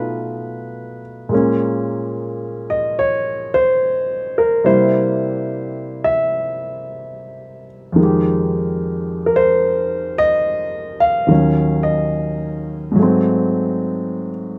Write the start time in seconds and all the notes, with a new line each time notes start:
Already playing: B2 A3 D#4 F4 B4
1.29 A#2 G#3 A#3
1.34 C#4
2.70 D#5
2.99 C#5
3.54 C5
4.38 A#4
4.64 C3 G3 A#3 E4 C5
6.04 E5
7.92 F2 D#3
7.99 G#3 G4
9.26 A#4
9.36 C5
10.18 D#5
11.00 F5
11.27 D#2 D#3 F#3
11.32 C#4
11.83 D#5
12.92 G#2
12.96 F#3 A3
13.03 C4